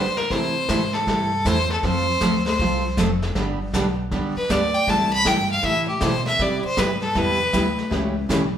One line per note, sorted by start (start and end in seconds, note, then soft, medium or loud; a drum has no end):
0.00 0.29 D3 medium
0.00 0.19 C5 medium
0.17 0.33 A#4 medium
0.17 snare soft
0.30 0.68 C3 medium
0.30 0.53 C3 medium
0.30 0.53 E3 medium
0.30 0.53 A3 medium
0.30 0.53 E4 medium
0.30 0.53 A4 medium
0.30 0.95 C5 medium
0.30 brush sweep medium
0.30 kick soft
0.30 snare soft
0.69 1.06 G#2 medium
0.69 0.81 C3 medium
0.69 0.81 E3 medium
0.69 0.81 A3 medium
0.69 0.81 E4 medium
0.69 0.81 A4 medium
0.69 kick soft
0.69 snare medium
0.69 hi-hat pedal medium
0.94 1.48 A4 medium
0.94 snare soft
1.07 1.44 G2 medium
1.07 1.29 C3 medium
1.07 1.29 E3 medium
1.07 1.29 A3 medium
1.07 1.30 E4 medium
1.07 1.29 A4 medium
1.07 brush sweep soft
1.07 kick soft
1.07 snare soft
1.45 1.82 E2 medium
1.45 1.57 C3 medium
1.45 1.57 E3 medium
1.45 1.57 A3 medium
1.45 1.57 E4 medium
1.45 1.57 A4 medium
1.45 1.71 C5 loud
1.45 kick soft
1.45 snare medium
1.45 hi-hat pedal medium
1.70 1.87 A4 medium
1.70 snare soft
1.83 2.20 F2 medium
1.83 2.06 F3 medium
1.83 2.06 A3 medium
1.83 2.06 C4 medium
1.83 2.06 F4 medium
1.83 2.06 A4 medium
1.83 2.46 C5 medium
1.83 brush sweep soft
1.83 kick soft
1.83 snare soft
2.21 2.58 D2 loud
2.21 2.33 F3 medium
2.21 2.33 A3 medium
2.21 2.33 C4 medium
2.21 2.33 F4 medium
2.21 2.34 A4 medium
2.21 kick soft
2.21 snare medium
2.21 hi-hat pedal medium
2.46 2.94 C5 medium
2.46 snare soft
2.59 2.96 C2 medium
2.59 2.82 F3 medium
2.59 2.82 A3 medium
2.59 2.82 C4 medium
2.59 2.82 F4 medium
2.59 2.83 A4 medium
2.59 brush sweep soft
2.59 kick soft
2.59 snare soft
2.97 3.34 F1 medium
2.97 3.09 F3 medium
2.97 3.09 A3 medium
2.97 3.10 C4 medium
2.97 3.10 F4 medium
2.97 3.10 A4 medium
2.97 kick soft
2.97 snare medium
2.97 hi-hat pedal medium
3.22 snare soft
3.35 3.72 G1 medium
3.35 3.57 D3 medium
3.35 3.57 G3 medium
3.35 3.58 B3 medium
3.35 3.58 D4 medium
3.35 3.58 G4 medium
3.35 brush sweep medium
3.35 kick soft
3.35 snare medium
3.73 4.11 B1 medium
3.73 3.85 D3 medium
3.73 3.86 G3 medium
3.73 3.85 B3 loud
3.73 3.86 D4 medium
3.73 3.86 G4 medium
3.73 kick soft
3.73 snare medium
3.73 hi-hat pedal medium
4.11 4.35 E2 medium
4.11 4.34 D3 medium
4.11 4.34 G3 medium
4.11 4.34 B3 medium
4.11 4.34 D4 medium
4.11 4.34 G4 medium
4.11 brush sweep medium
4.11 kick soft
4.11 snare soft
4.36 4.52 B4 medium
4.36 muted upright bass stroke soft
4.49 4.87 D2 medium
4.49 4.61 D3 medium
4.49 4.61 G3 medium
4.49 4.62 B3 medium
4.49 4.62 D4 medium
4.49 4.62 G4 medium
4.49 4.76 D5 loud
4.49 kick soft
4.49 snare medium
4.49 hi-hat pedal medium
4.75 4.91 G5 loud
4.87 5.24 C2 medium
4.87 5.10 C3 medium
4.87 5.10 E3 medium
4.87 5.10 A3 medium
4.87 5.10 E4 medium
4.87 5.10 A4 medium
4.87 5.12 A5 medium
4.87 brush sweep medium
4.87 kick soft
4.87 snare soft
5.13 5.29 B5 loud
5.25 5.62 G2 medium
5.25 5.37 C3 medium
5.25 5.37 E3 medium
5.25 5.37 A3 medium
5.25 5.38 E4 medium
5.25 5.38 A4 medium
5.25 5.51 G5 loud
5.25 kick soft
5.25 snare medium
5.25 hi-hat pedal soft
5.51 5.66 F5 medium
5.63 6.00 A2 medium
5.63 5.86 C3 medium
5.63 5.86 E3 medium
5.63 5.86 A3 medium
5.63 5.86 E4 medium
5.63 5.86 A4 medium
5.63 5.88 E5 loud
5.63 brush sweep medium
5.63 kick soft
5.63 snare medium
5.88 6.04 G4 medium
6.01 6.38 B2 medium
6.01 6.13 C3 medium
6.01 6.13 E3 medium
6.01 6.13 A3 medium
6.01 6.14 E4 medium
6.01 6.14 A4 medium
6.01 6.27 C5 medium
6.01 kick soft
6.01 snare medium
6.01 hi-hat pedal medium
6.26 6.43 E5 medium
6.26 snare soft
6.39 6.63 C3 medium
6.39 6.62 C3 medium
6.39 6.62 G3 medium
6.39 6.62 B3 medium
6.39 6.62 E4 medium
6.39 6.62 G4 medium
6.39 6.64 D5 medium
6.39 brush sweep soft
6.39 kick soft
6.39 snare medium
6.65 6.81 C5 loud
6.65 muted upright bass stroke soft
6.77 7.14 G2 medium
6.77 6.89 C3 medium
6.77 6.89 G3 medium
6.77 6.89 B3 medium
6.77 6.90 E4 medium
6.77 6.90 G4 medium
6.77 7.02 B4 medium
6.77 kick soft
6.77 snare medium
6.77 hi-hat pedal medium
7.02 7.20 A4 medium
7.02 snare soft
7.15 7.52 E2 medium
7.15 7.37 C3 medium
7.15 7.38 G3 medium
7.15 7.38 B3 medium
7.15 7.38 E4 medium
7.15 7.38 G4 medium
7.15 7.93 B4 loud
7.15 brush sweep medium
7.15 kick soft
7.15 snare medium
7.53 7.90 D2 medium
7.53 7.65 C3 medium
7.53 7.65 G3 medium
7.53 7.65 B3 medium
7.53 7.65 E4 medium
7.53 7.66 G4 medium
7.53 kick soft
7.53 snare medium
7.53 hi-hat pedal medium
7.78 snare soft
7.90 8.28 C#2 medium
7.90 8.13 C#3 medium
7.90 8.13 E3 medium
7.90 8.13 G3 medium
7.90 8.13 A3 medium
7.90 8.13 C#4 medium
7.90 8.14 C#4 soft
7.90 8.14 E4 medium
7.90 8.14 G4 medium
7.90 brush sweep medium
7.90 kick soft
7.90 snare soft
8.29 8.58 B1 medium
8.29 8.41 C#3 medium
8.29 8.41 E3 medium
8.29 8.41 A3 medium
8.29 8.41 C#4 medium
8.29 8.41 G4 medium
8.29 kick soft
8.29 snare medium
8.29 hi-hat pedal medium